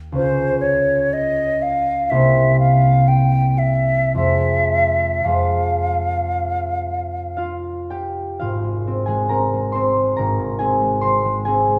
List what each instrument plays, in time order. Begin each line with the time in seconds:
Already playing: harp D#2 C#4 D#4 G4
0.12 harp C#2 C#4, flute C5
0.18 harp F4 G#4
0.61 flute C#5
1.13 flute D#5
1.62 flute F5
2.10 harp C2 A#3 G4 C5, flute E5
2.60 flute F5
3.08 flute G5
3.58 flute E5
4.15 harp F2 G#3 G#4 C5, flute E5
5.24 harp F2 G#3 G#4, flute F5
5.29 harp C5
7.37 harp F4 F5
7.90 harp G4 G5
8.39 harp G#1 F4 F5
8.64 harp G#3
8.87 harp C4
9.06 harp G#3 G#4 G#5
9.29 harp C4 A#4 A#5
9.53 harp G#3
9.72 harp C4 C5 C6
9.96 harp G#3
10.17 harp G#1 A#4 A#5
10.39 harp G#2
10.59 harp C4 G#4 G#5
10.81 harp G#3
11.01 harp C4 C5 C6
11.25 harp G#3
11.45 harp C4 G#4 G#5
11.69 harp G#3